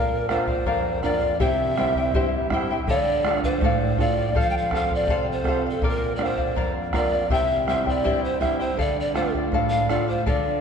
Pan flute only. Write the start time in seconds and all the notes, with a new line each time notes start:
Already playing: A#4
0.30 C5
1.03 D5
1.40 E5
2.89 D5
3.44 C5
4.00 D5
4.40 F5
4.50 G5
4.57 F5
4.75 F5
4.95 D5
5.32 C5
5.70 A4
5.89 A#4
6.16 D5
6.24 C5
6.96 D5
7.33 E5
7.69 E5
7.89 D5
8.24 C5
8.41 E5
8.61 C5
8.80 D5
9.00 D5
9.16 C5
9.70 F5
9.90 D5
10.09 C5
10.26 D5